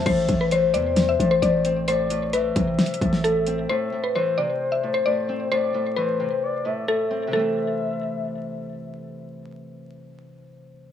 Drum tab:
CC |x-----------------------------------------------|------------------------------------------------|------------------------------------------------|------------------------------------------------|
HH |x-----x-----x-----x-----x-----x-----x-----x-----|x-----x-----x-----x-----x-x-x-x-----x-----x-----|------------------------------------------------|------------------------------------------------|
SD |------------------------o-----------------------|------------------------o--------o--------------|------------------------------------------------|------------------------------------------------|
BD |o-----o-----------------------------------------|------------------o-----------o-----------------|------------------------------------------------|------------------------------------------------|

CC |------------------------------------------------|------------------------------------------------|
HH |------------------------------------------------|------------------------------------------------|
SD |------------------------------------------------|------------------------------------------------|
BD |------------------------------------------------|------------------------------------------------|